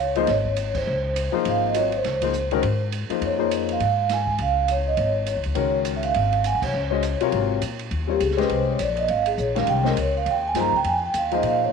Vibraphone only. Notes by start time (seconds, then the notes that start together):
0.00 C#5
0.17 D#5
0.29 C#5
0.77 C5
1.48 F5
1.67 D#5
1.79 C#5
1.96 C5
3.26 C#5
3.73 F5
4.13 G#5
4.42 F5
4.71 C#5
4.88 D#5
4.98 C#5
5.59 C#5
5.96 E5
6.04 F5
6.44 F#5 G#5
6.65 C#5
8.11 G4
8.22 G#4
8.39 B4
8.52 C5
8.70 C#5
8.82 D5
8.99 D#5
9.10 F5
9.27 G#4
9.39 C#5
9.56 F5
9.69 G5
9.88 A#4
10.00 C#5
10.17 F5
10.30 G5
10.48 G#5
10.60 A#5
10.76 G5
10.88 G#5
11.06 G5
11.18 F5
11.34 D#5
11.47 F5
11.65 C#5